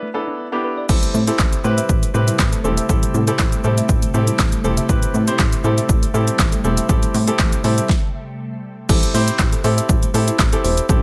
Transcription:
0.02 synth arpeggio sound A3
0.14 grand piano B3 D4 E4 A4, synth arpeggio sound B3
0.27 synth arpeggio sound D4
0.52 grand piano B3 D4 E4 G4, synth arpeggio sound A4
0.64 synth arpeggio sound B4
0.77 synth arpeggio sound D5
0.89 analog synth bass A1, ambient pad C3 G3 A3, synth arpeggio sound G3, grand piano C4 E4 G4 A4, kick, crash, shaker
1.02 synth arpeggio sound A3, closed hi-hat, shaker
1.14 analog synth bass A2, synth arpeggio sound C4, shaker
1.27 grand piano C4 E4 G4 A4, synth arpeggio sound E4, closed hi-hat, shaker
1.39 analog synth bass A1, kick, snare, clap, shaker
1.53 closed hi-hat, shaker
1.64 analog synth bass A2, grand piano C4 E4 G4 B4, synth arpeggio sound C5, shaker
1.77 synth arpeggio sound E5, closed hi-hat, shaker
1.89 analog synth bass A1, kick, shaker
2.03 synth arpeggio sound A3, closed hi-hat, shaker
2.14 analog synth bass A2, grand piano C4 E4 G4 B4, synth arpeggio sound C4, shaker
2.27 synth arpeggio sound E4, closed hi-hat, shaker
2.39 analog synth bass A1, kick, snare, clap, shaker
2.52 synth arpeggio sound A4, closed hi-hat, shaker
2.64 analog synth bass E1, grand piano C4 E4 G4 A4, synth arpeggio sound C5, shaker
2.77 synth arpeggio sound E5, closed hi-hat, shaker
2.89 analog synth bass A1, synth arpeggio sound G3, grand piano C4 E4 G4 A4, kick, shaker
3.03 synth arpeggio sound A3, closed hi-hat, shaker
3.14 analog synth bass A2, synth arpeggio sound C4, shaker
3.27 grand piano C4 E4 G4 A4, synth arpeggio sound E4, closed hi-hat, shaker
3.39 analog synth bass A1, kick, snare, clap, shaker
3.52 closed hi-hat, shaker
3.64 analog synth bass A2, grand piano C4 E4 G4 A4, synth arpeggio sound C5, shaker
3.77 synth arpeggio sound E5, closed hi-hat, shaker
3.89 analog synth bass A1, kick, shaker
4.02 synth arpeggio sound A3, closed hi-hat, shaker
4.14 analog synth bass A2, grand piano C4 E4 G4 A4, synth arpeggio sound C4, shaker
4.27 synth arpeggio sound E4, closed hi-hat, shaker
4.39 analog synth bass A1, kick, snare, clap, shaker
4.52 synth arpeggio sound A4, closed hi-hat, shaker
4.64 analog synth bass E1, grand piano C4 E4 G4 A4, synth arpeggio sound C5, shaker
4.77 synth arpeggio sound E5, closed hi-hat, shaker
4.89 analog synth bass A1, synth arpeggio sound G3, grand piano C4 E4 G4 B4, kick, shaker
5.02 synth arpeggio sound A3, closed hi-hat, shaker
5.14 analog synth bass A2, synth arpeggio sound C4, shaker
5.27 grand piano C4 E4 G4 C5, synth arpeggio sound E4, closed hi-hat, shaker
5.39 analog synth bass A1, kick, snare, clap, shaker
5.52 closed hi-hat, shaker
5.64 analog synth bass A2, grand piano C4 E4 G4 A4, synth arpeggio sound C5, shaker
5.77 synth arpeggio sound E5, closed hi-hat, shaker
5.89 analog synth bass A1, kick, shaker
6.02 synth arpeggio sound A3, closed hi-hat, shaker
6.14 analog synth bass A2, grand piano C4 E4 G4 A4, synth arpeggio sound C4, shaker
6.27 synth arpeggio sound E4, closed hi-hat, shaker
6.39 analog synth bass A1, kick, snare, clap, shaker
6.52 synth arpeggio sound A4, closed hi-hat, shaker
6.64 analog synth bass E1, grand piano C4 E4 G4 A4, synth arpeggio sound C5, shaker
6.77 synth arpeggio sound E5, closed hi-hat, shaker
6.89 analog synth bass A1, synth arpeggio sound G3, grand piano C4 E4 G4 A4, kick, shaker
7.03 synth arpeggio sound A3, closed hi-hat, shaker
7.14 analog synth bass A2, synth arpeggio sound C4, open hi-hat, shaker
7.27 grand piano C4 E4 G4 A4, synth arpeggio sound E4, closed hi-hat, shaker
7.39 analog synth bass A1, kick, snare, clap, shaker
7.52 closed hi-hat, shaker
7.64 analog synth bass A2, grand piano C4 E4 G4 A4, synth arpeggio sound C5, open hi-hat, shaker
7.77 synth arpeggio sound E5, closed hi-hat, shaker
7.89 kick, snare
8.89 analog synth bass A1, synth arpeggio sound G3, grand piano C4 E4 G4 A4, kick, crash, shaker
9.03 closed hi-hat, shaker
9.14 analog synth bass A2, grand piano C4 E4 G4 C5, open hi-hat, shaker
9.28 closed hi-hat, shaker
9.39 analog synth bass A1, synth arpeggio sound G4, kick, snare, clap, shaker
9.53 synth arpeggio sound A4, closed hi-hat, shaker
9.64 analog synth bass A2, grand piano C4 E4 G4 A4, synth arpeggio sound C5, open hi-hat, shaker
9.78 synth arpeggio sound E5, closed hi-hat, shaker
9.89 analog synth bass A1, synth arpeggio sound G3, kick, shaker
10.02 synth arpeggio sound A3, closed hi-hat, shaker
10.14 analog synth bass A2, grand piano C4 E4 G4 A4, open hi-hat, shaker
10.27 synth arpeggio sound E4, closed hi-hat, shaker
10.39 analog synth bass A1, synth arpeggio sound G4, kick, snare, clap, shaker
10.52 grand piano C4 E4 G4 A4, synth arpeggio sound A4, closed hi-hat, shaker
10.64 analog synth bass E1, synth arpeggio sound C5, open hi-hat, shaker
10.77 closed hi-hat, shaker
10.89 analog synth bass A1, synth arpeggio sound G3, grand piano C4 E4 G4 A4, kick, shaker

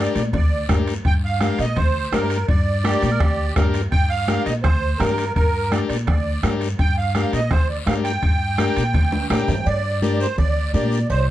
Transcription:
Already playing: transistor combo organ D4 G4 A#4
0.00 accordion D5
0.15 upright bass A#2, accordion D5, high conga, high timbale, short guiro
0.33 upright bass D2, accordion D5, bombo low, low conga, high timbale, long guiro
0.69 upright bass G2, transistor combo organ D4 G4 A#4, bombo low, bombo rim, high conga, high timbale, low timbale, short guiro
0.87 high timbale, short guiro
1.05 upright bass G2, accordion G5, bombo low, high timbale, long guiro
1.25 accordion F5
1.41 transistor combo organ D4 G4 A#4, bombo rim, high conga, high timbale, short guiro
1.59 upright bass A#2, accordion D#5, high timbale, short guiro
1.76 upright bass D2, accordion C5, bombo low, low conga, high timbale, long guiro
2.12 upright bass G2, transistor combo organ D4 G4 A#4, accordion A#4, bombo rim, high conga, high timbale, low timbale, short guiro
2.30 high timbale, short guiro
2.48 upright bass G2, accordion D5, bombo low, high timbale, long guiro
2.84 transistor combo organ D4 G4 A#4, tenor saxophone G4, bombo rim, high conga, high timbale, short guiro
3.02 upright bass A#2, high conga, high timbale, short guiro
3.12 tenor saxophone A#4
3.20 upright bass D2, tenor saxophone G4, bombo low, bombo rim, low conga, high timbale, long guiro
3.48 tenor saxophone G4
3.56 upright bass G2, transistor combo organ D4 G4 A#4, tenor saxophone A#4, bombo low, bombo rim, high conga, low conga, high timbale, low timbale, short guiro
3.74 high timbale, short guiro
3.92 upright bass G2, accordion G5, bombo low, high timbale, long guiro
4.09 accordion F5
4.28 transistor combo organ D4 G4 A#4, bombo rim, high conga, high timbale, short guiro
4.45 upright bass A#2, accordion D#5, high timbale, short guiro
4.63 upright bass D2, accordion C5, bombo low, bombo rim, low conga, high timbale, long guiro
4.98 upright bass G2, transistor combo organ D4 G4 A#4, accordion A#4, bombo rim, high conga, low conga, high timbale, low timbale, short guiro
5.18 high timbale, short guiro
5.34 upright bass G2, accordion A#4, bombo low, high timbale, long guiro
5.71 transistor combo organ D4 G4 A#4, accordion D5, bombo rim, high conga, high timbale, short guiro
5.89 upright bass A#2, accordion D5, high timbale, short guiro
6.07 upright bass D2, accordion D5, bombo low, bombo rim, low conga, high timbale, long guiro
6.43 upright bass G2, transistor combo organ D4 G4 A#4, bombo rim, high conga, high timbale, low timbale, short guiro
6.61 high timbale, short guiro
6.79 upright bass G2, accordion G5, bombo low, high timbale, long guiro
6.98 accordion F5
7.15 transistor combo organ D4 G4 A#4, bombo rim, high conga, high timbale, short guiro
7.33 upright bass A#2, accordion D#5, high timbale, short guiro
7.51 upright bass D2, accordion C5, bombo low, bombo rim, low conga, high timbale, long guiro
7.69 accordion D5
7.86 upright bass G2, transistor combo organ D4 G4 A#4, accordion F5, bombo rim, high conga, high timbale, low timbale, short guiro
8.04 accordion G5, high timbale, short guiro
8.23 upright bass G2, bombo low, high timbale, long guiro
8.58 transistor combo organ D4 G4 A#4, bombo rim, high conga, high timbale, short guiro
8.76 upright bass A#2, high timbale, short guiro
8.94 upright bass D2, bombo low, low conga, high timbale, long guiro
9.12 high conga, high timbale
9.30 upright bass A2, transistor combo organ D4 G4 A#4, accordion G5, bombo rim, high conga, low timbale, short guiro
9.48 upright bass G2, low conga, low timbale, short guiro
9.66 upright bass G2, accordion D5, cowbell, high conga, long guiro
10.02 transistor combo organ D4 G4 A#4, accordion D5, cowbell, high conga, short guiro
10.20 accordion C5, short guiro
10.38 upright bass D2, accordion D5, cowbell, high conga, low conga, long guiro
10.74 upright bass A#2, transistor combo organ D4 G4 A#4, accordion D5, cowbell, high conga, short guiro
10.92 short guiro
11.10 upright bass C2, accordion C5, cowbell, high conga, long guiro

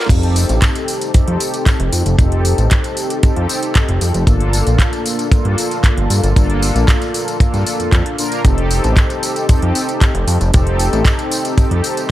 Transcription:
0.09 analog synth bass F1, analog polysynth C4 D#4 G4 A4, kick, closed hi-hat, tambourine, crash
0.23 closed hi-hat
0.36 open hi-hat, tambourine
0.49 analog synth bass A1, closed hi-hat, tambourine
0.62 kick, clap, closed hi-hat, tambourine
0.75 closed hi-hat, tambourine
0.88 open hi-hat, tambourine
1.01 closed hi-hat, tambourine
1.13 analog synth bass F2, analog polysynth C4 D#4 G4 A4, kick, closed hi-hat, tambourine
1.28 analog synth bass F2, closed hi-hat
1.40 open hi-hat, tambourine
1.54 closed hi-hat, tambourine
1.66 kick, clap, closed hi-hat, tambourine
1.80 analog synth bass F1, closed hi-hat
1.93 analog synth bass F2, open hi-hat, tambourine
2.06 analog synth bass F1, closed hi-hat, tambourine
2.18 analog synth bass F1, analog polysynth C4 D#4 G4 A4, kick, closed hi-hat, tambourine
2.32 closed hi-hat
2.45 open hi-hat, tambourine
2.58 analog synth bass A1, closed hi-hat, tambourine
2.71 kick, clap, closed hi-hat, tambourine
2.84 closed hi-hat, tambourine
2.97 open hi-hat, tambourine
3.10 closed hi-hat, tambourine
3.22 analog polysynth C4 D#4 G4 A4, kick, closed hi-hat, tambourine
3.36 analog synth bass F2, closed hi-hat
3.49 open hi-hat, tambourine
3.63 closed hi-hat, tambourine
3.75 kick, clap, closed hi-hat, tambourine
3.89 analog synth bass F1, closed hi-hat
4.01 analog synth bass F2, open hi-hat, tambourine
4.14 analog synth bass F1, closed hi-hat, tambourine
4.26 analog synth bass G1, analog polysynth A#3 D4 F4 A4, kick, closed hi-hat, tambourine
4.40 closed hi-hat
4.53 open hi-hat, tambourine
4.67 analog synth bass A#1, closed hi-hat, tambourine
4.79 kick, clap, closed hi-hat, tambourine
4.93 closed hi-hat, tambourine
5.06 open hi-hat, tambourine
5.19 closed hi-hat, tambourine
5.31 analog synth bass G2, analog polysynth A#3 D4 F4 A4, kick, closed hi-hat, tambourine
5.45 analog synth bass G2, closed hi-hat
5.58 open hi-hat, tambourine
5.71 closed hi-hat, tambourine
5.84 kick, clap, closed hi-hat, tambourine
5.97 analog synth bass G1, closed hi-hat
6.10 analog synth bass G2, open hi-hat, tambourine
6.23 analog synth bass G1, closed hi-hat, tambourine
6.35 analog synth bass G1, analog polysynth A#3 D4 F4 A4, kick, closed hi-hat, tambourine
6.50 closed hi-hat
6.62 open hi-hat, tambourine
6.75 analog synth bass A#1, closed hi-hat, tambourine
6.88 kick, clap, closed hi-hat, tambourine
7.02 closed hi-hat, tambourine
7.14 open hi-hat, tambourine
7.28 closed hi-hat, tambourine
7.39 analog polysynth A#3 D4 F4 A4, kick, closed hi-hat, tambourine
7.54 analog synth bass G2, closed hi-hat, tambourine
7.66 open hi-hat, tambourine
7.80 analog synth bass F2, closed hi-hat, tambourine
7.92 analog synth bass F2, kick, clap, closed hi-hat, tambourine
8.06 closed hi-hat
8.18 analog polysynth A#3 D4 F4 A#4, open hi-hat, tambourine
8.32 closed hi-hat, tambourine
8.44 analog synth bass F1, analog polysynth C4 D#4 G4 A4, kick, closed hi-hat, tambourine
8.58 closed hi-hat
8.71 open hi-hat, tambourine
8.84 analog synth bass A1, closed hi-hat, tambourine
8.96 kick, clap, closed hi-hat, tambourine
9.10 closed hi-hat, tambourine
9.23 open hi-hat, tambourine
9.36 closed hi-hat, tambourine
9.48 analog synth bass F2, analog polysynth C4 D#4 G4 A4, kick, closed hi-hat, tambourine
9.62 analog synth bass F2, closed hi-hat
9.75 open hi-hat, tambourine
9.89 closed hi-hat, tambourine
10.01 kick, clap, closed hi-hat, tambourine
10.14 analog synth bass F1, closed hi-hat
10.27 analog synth bass F2, open hi-hat, tambourine
10.41 analog synth bass F1, closed hi-hat, tambourine
10.52 analog synth bass F1, analog polysynth C4 D#4 G4 A4, kick, closed hi-hat, tambourine
10.67 closed hi-hat
10.79 open hi-hat, tambourine
10.93 analog synth bass A1, closed hi-hat, tambourine
11.05 kick, clap, closed hi-hat, tambourine
11.19 closed hi-hat, tambourine
11.31 open hi-hat, tambourine
11.45 closed hi-hat, tambourine
11.57 analog polysynth C4 D#4 G4 A4, kick, closed hi-hat, tambourine
11.71 analog synth bass F2, closed hi-hat
11.84 open hi-hat, tambourine
11.97 closed hi-hat, tambourine

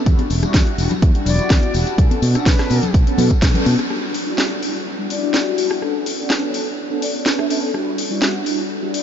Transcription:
0.05 fingered electric bass E2, analog polysynth G3 D4 E4 F#4, kick, closed hi-hat, tambourine
0.19 closed hi-hat, high conga
0.30 fingered electric bass E1, open hi-hat, tambourine
0.42 analog polysynth G3 D4 E4 F#4, muted fingered electric bass stroke, cross-stick, closed hi-hat, tambourine
0.54 fingered electric bass E2, kick, snare, closed hi-hat
0.67 closed hi-hat
0.77 fingered electric bass E1, analog polysynth G3 D4 E4 F#4, open hi-hat, tambourine
0.91 closed hi-hat, tambourine, low conga
1.02 fingered electric bass E2, kick, closed hi-hat
1.13 analog polysynth G3 D4 E4 F#4, closed hi-hat
1.26 fingered electric bass E1, flute D5, open hi-hat, tambourine, low conga
1.38 analog polysynth G3 D4 E4 F#4, muted fingered electric bass stroke, closed hi-hat, tambourine
1.50 fingered electric bass E2, kick, snare, closed hi-hat, tambourine
1.63 closed hi-hat, high conga
1.73 fingered electric bass E1, analog polysynth G3 D4 E4 F#4, open hi-hat, tambourine
1.87 closed hi-hat, tambourine
1.97 fingered electric bass B1, analog polysynth B3 C#4 D4 A4, kick, closed hi-hat
2.11 muted fingered electric bass stroke, closed hi-hat, high conga
2.22 fingered electric bass B2, open hi-hat, tambourine
2.34 analog polysynth B3 C#4 D4 A4, muted fingered electric bass stroke, cross-stick, closed hi-hat, tambourine
2.46 fingered electric bass B1, flute B4, kick, snare, closed hi-hat, tambourine
2.59 cross-stick, snare, closed hi-hat
2.70 fingered electric bass B2, analog polysynth B3 C#4 D4 A4, open hi-hat, tambourine, high conga
2.83 closed hi-hat, tambourine, low conga
2.94 fingered electric bass B1, kick, closed hi-hat, tambourine
3.06 analog polysynth B3 C#4 D4 A4, muted fingered electric bass stroke, closed hi-hat
3.18 fingered electric bass B2, open hi-hat, tambourine, low conga
3.30 muted fingered electric bass stroke, kick, closed hi-hat, tambourine
3.42 fingered electric bass B1, kick, snare, closed hi-hat, tambourine
3.54 analog polysynth B3 C#4 D4 A4, closed hi-hat, low conga
3.66 fingered electric bass B2, open hi-hat, tambourine, high conga
3.79 cross-stick, closed hi-hat, tambourine
3.90 analog polysynth G3 D4 E4 F#4, cross-stick
4.14 open hi-hat
4.26 analog polysynth G3 D4 E4 F#4
4.38 snare
4.62 analog polysynth G3 D4 E4 F#4, open hi-hat
4.98 analog polysynth G3 D4 E4 F#4
5.10 flute D5, open hi-hat
5.22 analog polysynth G3 D4 E4 F#4
5.34 snare
5.57 analog polysynth G3 D4 E4 F#4, open hi-hat
5.71 cross-stick
5.81 analog polysynth B3 C#4 D4 A4, cross-stick
6.06 open hi-hat
6.18 analog polysynth B3 C#4 D4 A4
6.30 cross-stick, snare
6.53 analog polysynth B3 C#4 D4 A4, open hi-hat
6.90 analog polysynth B3 C#4 D4 A4
7.02 flute D5, open hi-hat
7.14 analog polysynth B3 C#4 D4 A4
7.26 snare
7.39 flute E5, cross-stick
7.49 analog polysynth B3 C#4 D4 A4, flute E5, open hi-hat
7.73 analog polysynth G3 D4 E4 F#4, cross-stick
7.98 open hi-hat
8.10 analog polysynth G3 D4 E4 F#4
8.22 snare
8.46 analog polysynth G3 D4 E4 F#4, open hi-hat
8.82 analog polysynth G3 D4 E4 F#4
8.94 flute D5, open hi-hat

